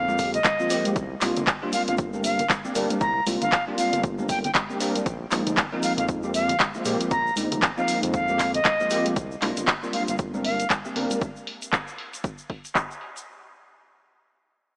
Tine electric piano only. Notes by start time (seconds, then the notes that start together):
0.08 F3 G#3 A#3 C4 G4
0.60 F3 G#3 A#3 C4 F4
0.70 F3 G#3 A#3 C4 G4
1.21 G3 A#3 C4 D4 F4
1.62 G3 A#3 C4 D4 F4
2.13 G3 A#3 C4 D4 A#4
2.65 G3 A#3 C4 D4 G4
2.75 G3 A#3 C4 D4 A#4
3.27 G3 A#3 C4 D4 F4
3.67 G3 A#3 C4 D4 F4
4.19 G3 A#3 C4 D4 A#4
4.70 G3 A#3 C4 D4 G4
4.80 G3 A#3 C4 D4 A#4
5.32 F3 G#3 A#3 C4 D#4
5.72 F3 G#3 A#3 C4 D#4
6.24 F3 G#3 A#3 C4 G4
6.75 F3 G#3 A#3 C4 F4
6.85 F3 G#3 A#3 C4 G4
7.37 F3 G#3 A#3 C4 D#4
7.78 F3 G#3 A#3 C4 D#4
8.29 F3 G#3 A#3 C4 G4
8.80 F3 G#3 A#3 C4 F4
8.91 F3 G#3 A#3 C4 G4
9.42 G3 A#3 C4 D4 F4
9.83 G3 A#3 C4 D4 F4
10.34 G3 A#3 C4 D4 A#4
10.85 G3 A#3 C4 D4 G4
10.96 G3 A#3 C4 D4 A#4